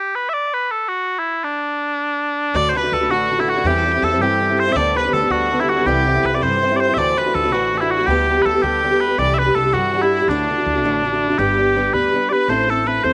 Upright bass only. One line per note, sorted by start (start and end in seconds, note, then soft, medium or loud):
2.54 2.88 D2 loud
2.92 3.10 D2 medium
3.10 3.59 A1 medium
3.64 3.98 E2 loud
4.03 4.20 E2 loud
4.20 4.70 G2 medium
4.75 5.09 D2 medium
5.13 5.29 D2 loud
5.30 5.80 D2 medium
5.86 6.20 C2 loud
6.24 6.43 C2 medium
6.41 6.91 G2 medium
6.97 7.30 D2 loud
7.35 7.52 D2 loud
7.52 8.02 A1 medium
8.07 8.41 D2 loud
8.45 8.61 D2 medium
8.63 9.12 D2 medium
9.18 9.52 C2 loud
9.56 9.74 C2 medium
9.73 10.22 G2 medium
10.28 10.62 D2 medium
10.66 10.83 D2 medium
10.83 11.33 A1 medium
11.39 11.88 G1 loud
11.93 12.12 D2 medium
12.48 12.98 A1 medium
13.04 13.13 E2 medium